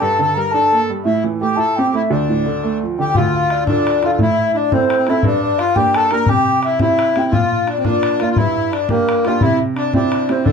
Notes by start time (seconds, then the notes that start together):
0.00 G2 A4 A5
0.19 D3 A4
0.34 G3 A#4 A#5
0.51 D4 A4 A5
0.72 A#3
0.90 G3
1.04 A2 E4 E5
1.24 E3
1.41 A3 G4 G5
1.56 E4 A4 A5
1.76 C4 G4 G5
1.93 A3 E4 E5
2.10 D2 D4 D5
2.29 A2
2.46 D3
2.63 A3
2.83 F3
2.98 D3 G4 G5
3.15 D2 F4 F5, bodhran
3.34 F5, bodhran
3.50 D5, bodhran
3.66 D4 F4 A4 D5, bodhran
3.87 bodhran
4.03 D4 F4 A4 F5, bodhran
4.12 F4
4.19 A2 E4 E5, bodhran
4.39 bodhran
4.53 D4 E4
4.58 D5
4.72 C4 E4 A4 C5, bodhran
4.86 C4, bodhran
4.97 C4
5.07 C4 E4 A4 E5, bodhran
5.23 G2 D4 D5, bodhran
5.43 D5, bodhran
5.58 F4 F5, bodhran
5.75 A#3 D4 G4 G5, bodhran
5.94 A4 A5, bodhran
6.11 A#3 D4 G4 A#4 A#5, bodhran
6.26 C3 G4 G5, bodhran
6.47 bodhran
6.63 E4 E5, bodhran
6.79 C4 E4 G4 E5, bodhran
6.99 bodhran
7.16 C4 E4 G4 G5, bodhran
7.31 A#2 F4 F5, bodhran
7.52 F5, bodhran
7.67 D4, bodhran
7.72 D5
7.78 C4
7.83 A#3 D4 F4 D5, bodhran
8.03 bodhran
8.20 A#3 D4 F4 F5, bodhran
8.31 F4 F5
8.36 G2 E4 E5, bodhran
8.57 bodhran
8.71 D4 D5, bodhran
8.89 A#3 D4 G4 A#4, bodhran
9.09 bodhran
9.25 A#3 D4 F4 G4 F5, bodhran
9.41 C3 E4 E5, bodhran
9.61 bodhran
9.76 D4 D5, bodhran
9.93 C4 D4 E4 G4 D5, bodhran
10.12 bodhran
10.28 C4 E4 G4 C5, bodhran
10.43 D3 D4 D5, bodhran